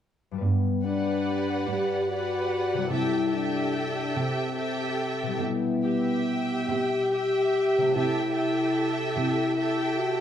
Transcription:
0.31 G2 G3 F#4
0.38 B3 B4
0.42 G2
0.84 D4 G4 B4 D5 F#5
1.67 G2 G4
2.09 F#4 G4 B4 D5 F#5
2.73 C3
2.78 G3
2.83 E4
2.87 C3 A4
2.91 E4 G4 A4 E5 G5
3.33 D4 G4 A4 E5 G5
4.16 C3 C4
4.57 G4 A4 E5 G5
5.23 B2
5.27 G3
5.32 E4 G4
5.41 B2 B3
5.84 G4 E5 G5
6.70 B2 G4
7.12 G4 E5 G5
7.78 C3
7.82 A3
7.87 E4
7.91 G4 E5 G5
7.95 C3 E4 G4 A4
8.35 G4 A4 E5 G5
9.18 C3 E4
9.58 G4 A4 E5 G5
9.99 F#4

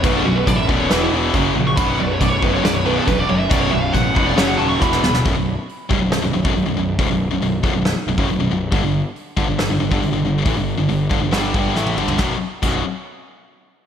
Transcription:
0.03 B0 B1 F#2 B2 B4, kick, crash
0.16 D4
0.25 B0 B1 F#2 F#4
0.36 B4
0.46 A1 B1 F#2 B2 D5, kick, crash
0.56 E5
0.67 D#1 B1 F#2 B2 D5, kick
0.79 C#5
0.90 E1 E2 B2 E3 B4, snare, crash
1.00 E4
1.12 E1 E2 B2 E3
1.34 F#1 F#2 C#3 F#3, kick, crash
1.56 A#1 F#2 C#3 F#3
1.67 C#6
1.77 B0 B1 F#2 B2 B5, kick, crash
1.87 F#5
1.99 B0 B1 F#2 D5
2.07 B4
2.13 C#5
2.20 B0 B1 F#2 B2 D5, kick, crash
2.30 C#5
2.42 F#1 B1 F#2 B2 B4, kick
2.54 C#5
2.62 B0 B1 F#2 B2 D5, snare, crash
2.76 C#5
2.86 B1 F#2 B2 B4
2.96 A4
3.07 E1 B1 F#2 B2 B4, kick, crash
3.19 D5
3.29 F#1 B1 F#2 B2 C#5
3.39 E5
3.50 B0 B1 F#2 B2 D5, kick, crash
3.61 C#5
3.71 B0 B1 F#2 E5
3.82 F5
3.93 A1 B1 F#2 B2 F#5, kick, crash
4.14 F1 B1 F#2 B2, kick
4.26 D5
4.36 F#1 F#2 C#3 F#3 C#5, snare, crash
4.48 F#5
4.58 D#1 F#2 C#3 F#3 A5
4.69 C#6
4.80 E1 E2 B2 E3 B5, kick, snare
4.93 snare
5.03 D1 E2 B2 E3, snare
5.14 snare
5.25 B0 B1 F#2, kick, open hi-hat
5.36 B0 B1 F#2
5.69 open hi-hat
5.89 C1 C2 G2, kick
6.01 B0 B1 F#2
6.12 B0 B1 F#2, snare, open hi-hat
6.22 B0 B1 F#2
6.33 B0 B1 F#2
6.44 B0 B1 F#2, kick
6.55 B0 B1 F#2, open hi-hat
6.66 B0 B1 F#2
6.77 B0 B1 F#2
6.99 D1 D2 A2, kick, open hi-hat
7.10 B0 B1 F#2
7.31 B0 B1 F#2
7.41 B0 B1 F#2, open hi-hat
7.63 B0 B1 F#2, kick
7.74 B0 B1 F#2
7.85 snare
8.07 B0 B1 F#2
8.18 F#1 F#2 C#3, kick
8.28 B0 B1 F#2, open hi-hat
8.38 B0 B1 F#2
8.50 B0 B1 F#2
8.72 G1 G2 D3, kick, open hi-hat
8.83 G1 G2 D3
9.16 open hi-hat
9.37 G1 G2 D3, kick
9.49 G1 G2 D3
9.59 G1 G2 D3, snare, open hi-hat
9.70 G1 G2 D3
9.80 G1 G2 D3
9.91 G1 G2 D3, kick
10.02 G1 G2 D3, open hi-hat
10.12 G1 G2 D3
10.24 G1 G2 D3
10.45 A1 A2 E3, kick, open hi-hat
10.57 G1 G2 D3
10.77 G1 G2 D3
10.89 G1 G2 D3, open hi-hat
11.09 G1 G2 D3, kick
11.21 G1 G2 D3
11.31 G1 G2 D3 G3, snare, open hi-hat
11.54 G1 G2 D3 G3, kick
11.75 A1 A2 E3 A3, snare
11.86 high tom
11.97 G1 G2 D3 G3, mid tom
12.08 floor tom
12.18 B0 B1 F#2 B2, kick, snare
12.62 B0 B1 F#2 B2, kick, crash

